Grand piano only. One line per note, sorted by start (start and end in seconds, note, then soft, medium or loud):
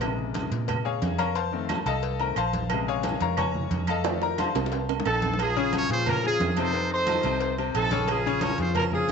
0.01 1.32 C3 medium
0.01 1.32 C#3 soft
0.01 1.32 G#3 medium
0.85 1.17 G#4 medium
0.85 1.17 C#5 medium
0.85 1.17 F5 medium
0.85 1.16 G#5 medium
1.18 1.35 A#4 medium
1.18 1.35 C#5 medium
1.18 1.35 F5 medium
1.18 1.35 A#5 loud
1.36 1.83 C5 medium
1.36 1.83 F5 medium
1.36 1.83 A5 medium
1.36 1.83 C6 loud
1.52 1.75 D#3 medium
1.52 1.75 A3 medium
1.52 1.75 C4 medium
1.87 2.18 A4 medium
1.87 2.18 D#5 medium
1.87 2.18 F5 medium
1.87 2.18 A5 loud
2.20 2.35 D#3 soft
2.20 2.35 A3 soft
2.20 2.36 C4 medium
2.20 2.37 A#4 medium
2.20 2.36 A#5 medium
2.37 2.84 C5 medium
2.37 2.84 F5 medium
2.37 2.69 A5 medium
2.37 2.84 C6 loud
2.71 4.02 C3 medium
2.71 4.01 C#3 medium
2.71 4.01 G#3 medium
2.88 3.19 G#4 medium
2.88 3.19 C#5 loud
2.88 3.19 F5 medium
2.88 3.19 G#5 loud
3.22 3.38 A#4 medium
3.22 3.37 C#5 medium
3.22 3.38 F5 medium
3.22 3.37 A#5 loud
3.38 3.85 C#5 medium
3.38 3.85 G#5 medium
3.38 3.85 A#5 medium
3.38 3.85 C#6 loud
3.89 4.20 A4 medium
3.89 4.20 D#5 medium
3.89 4.20 F5 medium
3.89 4.20 A5 loud
4.05 4.27 D#3 medium
4.05 4.28 A3 medium
4.05 4.28 C4 medium
4.23 4.39 A#4 medium
4.23 4.38 A#5 loud
4.40 4.86 C5 medium
4.40 4.86 F5 medium
4.40 4.86 A5 medium
4.40 4.86 C6 medium
5.56 5.84 C#3 loud
5.56 5.84 C#4 loud
5.56 5.84 C#5 loud
5.90 6.18 F3 medium
5.90 6.18 F4 medium
5.90 6.18 G#4 medium
6.23 6.51 F3 medium
6.23 6.51 F4 medium
6.23 6.51 G#4 medium
6.57 6.71 C3 loud
6.57 6.71 C4 loud
6.57 6.71 C5 loud
6.75 7.02 C3 medium
6.75 7.02 C4 medium
6.75 7.02 C5 medium
7.08 7.22 D#3 medium
7.08 7.22 D#4 medium
7.08 7.22 F4 medium
7.25 7.52 C3 medium
7.25 7.52 C4 medium
7.25 7.52 C5 medium
7.58 7.86 C3 medium
7.58 7.86 C4 medium
7.58 7.86 C5 medium
7.92 8.19 C#3 loud
7.92 8.19 C#4 medium
7.92 8.20 C#5 loud
8.26 8.53 C#3 loud
8.26 8.53 C#4 loud
8.26 8.54 C#5 loud
8.59 8.87 F3 medium
8.59 8.87 F4 medium
8.59 8.87 G#4 medium
8.93 9.12 F3 medium
8.93 9.12 F4 medium
8.93 9.12 G#4 medium